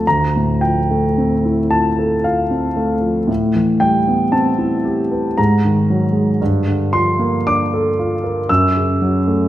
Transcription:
<<
  \new Staff \with { instrumentName = "Grand piano" } { \time 3/4 \key a \phrygian \tempo 4 = 57 bes''8 g''4 a''8 f''4 | r8 g''8 a''4 ais''4 | r8 c'''8 d'''4 e'''4 | }
  \new Staff \with { instrumentName = "Grand piano" } { \time 3/4 \key a \phrygian d,16 a,16 f16 a16 c'16 e'16 f'16 a'16 f'16 c'16 a16 f16 | a,16 e16 g16 b16 c'16 e'16 g'16 b'16 gis,16 dis16 fis16 gis16 | g,16 d16 f16 bes16 d'16 a'16 f'16 bes'16 fis,16 cis16 fis16 a16 | }
>>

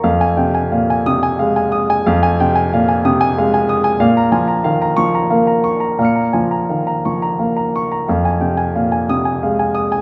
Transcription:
<<
  \new Staff \with { instrumentName = "Grand piano" } { \time 6/8 \key f \phrygian \tempo 4. = 60 << { r4. ees'''8 r4 | r2. | r4. des'''8 r4 | <bes'' f''' des''''>2. |
r4. ees'''8 r4 | } \\ { f''16 aes''16 g''16 aes''16 f''16 aes''8 aes''16 f''16 aes''16 ees'''16 aes''16 | f''16 aes''16 g''16 aes''16 f''16 aes''16 ees'''16 aes''16 f''16 aes''16 ees'''16 aes''16 | f''16 bes''16 aes''16 bes''16 f''16 bes''8 bes''16 f''16 bes''16 des'''16 bes''16 | f''16 bes''16 aes''16 bes''16 f''16 bes''16 des'''16 bes''16 f''16 bes''16 des'''16 bes''16 |
f''16 aes''16 g''16 aes''16 f''16 aes''8 aes''16 f''16 aes''16 ees'''16 aes''16 | } >> }
  \new Staff \with { instrumentName = "Grand piano" } { \clef bass \time 6/8 \key f \phrygian f,8 c8 bes,8 c8 aes4 | f,8 c8 bes,8 c8 aes4 | bes,8 f8 ees8 f8 bes4 | bes,8 f8 ees8 f8 bes4 |
f,8 c8 bes,8 c8 aes4 | }
>>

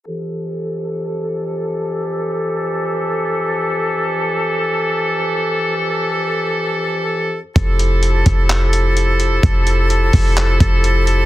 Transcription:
<<
  \new Staff \with { instrumentName = "Woodwind section" } { \time 4/4 \key f \major \tempo 4 = 128 <f, e g' a'>1~ | <f, e g' a'>1~ | <f, e g' a'>1~ | <f, e g' a'>1 |
<f e' g' a'>1~ | <f e' g' a'>1 | }
  \new Staff \with { instrumentName = "808-style bass" } { \clef bass \time 4/4 \key f \major r1 | r1 | r1 | r1 |
f,,4. f,,2~ f,,8 | f,,4. f,,4 f,,4. | }
  \new DrumStaff \with { instrumentName = "Drums" } \drummode { \time 4/4 r4 r4 r4 r4 | r4 r4 r4 r4 | r4 r4 r4 r4 | r4 r4 r4 r4 |
<hh bd>8 hh8 hh8 <hh bd>8 <hc hh>8 hh8 hh8 hh8 | <hh bd>8 hh8 hh8 <hho bd>8 <hc hh>8 <hh bd>8 hh8 hh8 | }
>>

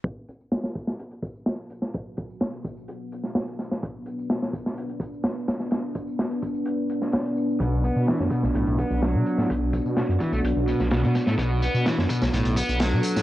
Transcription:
<<
  \new Staff \with { instrumentName = "Ambient pad" } { \time 4/4 \key b \minor \tempo 4 = 127 << { fis'1~ | fis'1 | b'1~ | b'1 |
fis'1~ | fis'1 | a'1 | } \\ { <b d'>1~ | <b d'>1~ | <b d'>1~ | <b d'>1~ |
<b d'>1~ | <b d'>1~ | <b d'>1 | } >> }
  \new Staff \with { instrumentName = "Overdriven electric guitar" } { \clef bass \time 4/4 \key b \minor r1 | r1 | r1 | r1 |
b,8 b8 e16 r16 b,16 r16 a,8 b8 fis4 | r4. e16 a16 r8 b,16 r16 b,16 b,16 r16 a16 | b,8 b8 e16 r16 b,16 r16 a,8 b8 fis4 | }
  \new Staff \with { instrumentName = "Detuned saw bass" } { \clef bass \time 4/4 \key b \minor r1 | r1 | r1 | r1 |
b,,8. b,16 r16 fis,16 r16 b,,16 b,,16 b,,16 r16 b,,8 b,16 r16 a,16 | b,,8. b,16 r16 fis,16 r16 b,,16 b,,16 b,,16 r16 b,,8 b,16 r16 a,16 | b,,8. b,16 r16 fis,16 r16 b,,16 b,,16 b,,16 r16 b,,8 b,16 r16 a,16 | }
  \new DrumStaff \with { instrumentName = "Drums" } \drummode { \time 4/4 <hh bd tamb>8 <hh tamb>16 tamb16 <hh sn tamb>16 sn16 <hh bd tamb>16 <sn tamb>16 <hh tamb>16 hh16 <hh bd tamb>16 tamb16 <hh sn tamb>8 <hh tamb>16 <sn tamb>16 | <hh bd tamb>8 <hh bd tamb>16 tamb16 <hh sn tamb>16 hh16 <hh bd tamb>16 tamb16 <hh tamb>8 <hh tamb>16 <sn tamb>16 <hh sn tamb>16 hh16 <hh sn tamb>16 <sn tamb>16 | <hh bd tamb>8 <hh tamb>16 tamb16 <hh sn tamb>16 sn16 <hh bd tamb>16 <sn tamb>16 <hh tamb>16 hh16 <hh bd tamb>16 tamb16 <hh sn tamb>8 <hh sn tamb>16 <sn tamb>16 | <hh sn tamb>8 <hh bd tamb>16 tamb16 <hh sn tamb>16 hh16 <hh bd tamb>16 tamb16 <hh tamb>8 <hh tamb>16 <sn tamb>16 <hh sn>16 hh16 tamb16 tamb16 |
<hh bd tamb>8 <hh tamb>16 tamb16 <hh sn tamb>16 sn16 <hh bd tamb>16 <sn tamb>16 <hh tamb>16 hh16 <hh bd tamb>16 tamb16 <hh sn tamb>8 <hh tamb>16 <sn tamb>16 | <hh bd tamb>8 <hh bd tamb>16 tamb16 <hh sn tamb>16 hh16 <hh bd tamb>16 tamb16 <hh tamb>8 <hh tamb>16 <sn tamb>16 <hh sn tamb>16 hh16 <hh sn tamb>16 <sn tamb>16 | <hh bd tamb>8 <hh tamb>16 tamb16 <hh sn tamb>16 sn16 <hh bd tamb>16 <sn tamb>16 <hh tamb>16 hh16 <hh bd tamb>16 tamb16 <hh sn tamb>8 <hh tamb>16 <sn tamb>16 | }
>>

